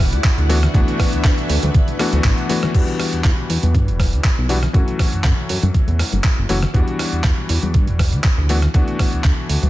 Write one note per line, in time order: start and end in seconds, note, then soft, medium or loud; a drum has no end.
0.00 0.14 E1 medium
0.00 0.46 E3 medium
0.00 0.46 G3 medium
0.00 0.47 B3 medium
0.00 0.47 D4 medium
0.00 0.48 E4 medium
0.00 0.47 F#4 loud
0.00 0.48 D5 medium
0.00 2.71 F#5 medium
0.13 0.20 D2 medium
0.13 closed hi-hat medium
0.24 kick loud
0.24 clap loud
0.24 closed hi-hat medium
0.38 0.67 D2 medium
0.38 closed hi-hat soft
0.49 0.57 E3 loud
0.49 0.57 A3 medium
0.49 0.57 B3 medium
0.49 2.72 D4 medium
0.49 0.57 D4 medium
0.49 0.57 F#4 loud
0.49 2.72 B4 medium
0.49 2.72 E5 medium
0.49 open hi-hat loud
0.63 cross-stick medium
0.63 closed hi-hat medium
0.63 low conga medium
0.74 0.83 D2 loud
0.74 1.97 E3 medium
0.74 1.97 A3 medium
0.74 1.97 B3 medium
0.74 1.98 D4 medium
0.74 1.98 F#4 loud
0.74 kick loud
0.74 closed hi-hat medium
0.88 closed hi-hat soft
0.99 kick medium
0.99 cross-stick medium
0.99 open hi-hat loud
1.13 1.22 D2 soft
1.13 closed hi-hat medium
1.24 1.33 D2 medium
1.24 kick loud
1.24 clap loud
1.24 closed hi-hat medium
1.38 closed hi-hat soft
1.50 1.58 D2 loud
1.50 open hi-hat loud
1.63 1.70 D2 medium
1.63 closed hi-hat medium
1.63 high conga medium
1.74 kick loud
1.74 closed hi-hat medium
1.74 low conga medium
1.88 closed hi-hat soft
1.99 2.47 E3 loud
1.99 2.47 A3 medium
1.99 2.47 B3 medium
1.99 2.47 D4 medium
1.99 2.47 F#4 loud
1.99 cross-stick medium
1.99 open hi-hat loud
2.13 2.20 D2 loud
2.13 closed hi-hat medium
2.13 high conga medium
2.24 2.33 A1 medium
2.24 kick loud
2.24 clap loud
2.24 closed hi-hat medium
2.38 closed hi-hat soft
2.49 2.72 E3 medium
2.49 2.72 A3 medium
2.49 2.72 B3 medium
2.49 2.72 D4 medium
2.49 2.72 F#4 loud
2.49 open hi-hat loud
2.49 high conga medium
2.63 cross-stick medium
2.63 closed hi-hat medium
2.63 high conga medium
2.63 low conga medium
2.74 2.83 E2 loud
2.74 4.46 E3 medium
2.74 4.47 G3 medium
2.74 4.47 B3 medium
2.74 4.47 D4 medium
2.74 4.47 F#4 medium
2.74 kick loud
2.74 closed hi-hat medium
2.74 crash medium
2.88 closed hi-hat soft
3.00 cross-stick medium
3.00 open hi-hat loud
3.13 3.22 E2 soft
3.13 closed hi-hat medium
3.24 3.33 E2 medium
3.24 kick loud
3.24 clap loud
3.24 closed hi-hat medium
3.50 3.58 E2 loud
3.50 open hi-hat loud
3.63 3.76 E2 medium
3.63 closed hi-hat medium
3.63 high conga medium
3.74 3.90 G2 medium
3.74 kick loud
3.74 closed hi-hat medium
3.74 low conga medium
3.88 4.15 E1 medium
3.88 closed hi-hat soft
3.99 kick medium
3.99 cross-stick medium
3.99 open hi-hat loud
3.99 high conga medium
4.13 4.20 D2 medium
4.13 closed hi-hat medium
4.24 kick loud
4.24 clap loud
4.24 closed hi-hat medium
4.38 4.68 B1 medium
4.49 4.57 E3 medium
4.49 4.57 G3 medium
4.49 4.57 B3 medium
4.49 4.57 D4 medium
4.49 4.57 F#4 loud
4.49 open hi-hat loud
4.63 cross-stick medium
4.63 closed hi-hat medium
4.63 low conga medium
4.73 4.83 F#2 loud
4.73 6.46 E3 medium
4.73 6.46 F#3 medium
4.73 6.47 A3 medium
4.73 6.47 C#4 medium
4.73 6.47 F#4 medium
4.73 kick loud
4.73 closed hi-hat medium
4.88 closed hi-hat soft
4.99 kick medium
4.99 cross-stick medium
4.99 open hi-hat loud
5.13 5.22 F#2 soft
5.13 closed hi-hat medium
5.24 5.33 F#2 medium
5.24 kick loud
5.24 clap loud
5.24 closed hi-hat medium
5.49 5.58 F#2 loud
5.49 open hi-hat loud
5.63 5.70 F#2 medium
5.63 closed hi-hat medium
5.63 high conga medium
5.74 kick loud
5.74 closed hi-hat medium
5.74 low conga medium
5.88 6.03 E2 medium
5.88 closed hi-hat soft
5.99 cross-stick medium
5.99 open hi-hat loud
6.13 6.20 F#1 loud
6.13 closed hi-hat medium
6.13 high conga medium
6.24 kick loud
6.24 clap loud
6.24 closed hi-hat medium
6.38 6.45 F#1 medium
6.49 6.66 F#1 medium
6.49 6.57 E3 medium
6.49 6.57 F#3 medium
6.49 6.57 A3 medium
6.49 6.57 C#4 medium
6.49 6.57 F#4 loud
6.49 open hi-hat loud
6.62 cross-stick medium
6.62 closed hi-hat medium
6.62 high conga medium
6.62 low conga medium
6.74 6.83 E2 loud
6.74 8.46 E3 medium
6.74 8.47 G3 medium
6.74 8.47 B3 medium
6.74 8.47 D4 medium
6.74 8.47 F#4 medium
6.74 kick loud
6.74 closed hi-hat medium
6.88 closed hi-hat soft
6.99 cross-stick medium
6.99 open hi-hat loud
7.12 7.22 E2 soft
7.12 closed hi-hat soft
7.24 7.33 E2 medium
7.24 kick loud
7.24 clap loud
7.24 closed hi-hat medium
7.49 7.58 E2 loud
7.49 open hi-hat loud
7.63 7.76 E2 medium
7.63 closed hi-hat soft
7.63 high conga medium
7.74 7.89 G2 medium
7.74 kick loud
7.74 closed hi-hat medium
7.74 low conga medium
7.87 8.14 E1 medium
7.87 closed hi-hat soft
7.99 kick medium
7.99 cross-stick medium
7.99 open hi-hat loud
7.99 high conga medium
8.13 8.20 D2 medium
8.13 closed hi-hat medium
8.24 kick loud
8.24 clap loud
8.24 closed hi-hat medium
8.38 8.67 D2 medium
8.49 8.57 E3 medium
8.49 8.57 A3 medium
8.49 8.57 B3 medium
8.49 8.57 D4 medium
8.49 8.57 F#4 loud
8.49 open hi-hat loud
8.62 cross-stick medium
8.62 closed hi-hat soft
8.62 low conga medium
8.74 8.83 D2 medium
8.74 9.70 E3 medium
8.74 9.70 A3 medium
8.74 9.70 B3 medium
8.74 9.70 D4 medium
8.74 9.70 F#4 medium
8.74 kick loud
8.74 closed hi-hat medium
8.88 closed hi-hat soft
8.99 kick medium
8.99 cross-stick medium
8.99 open hi-hat loud
9.13 9.22 D2 soft
9.13 closed hi-hat soft
9.24 9.33 D2 medium
9.24 kick loud
9.24 clap loud
9.24 closed hi-hat medium
9.49 9.58 D2 loud
9.49 open hi-hat loud
9.63 9.70 D2 medium
9.63 closed hi-hat soft
9.63 high conga medium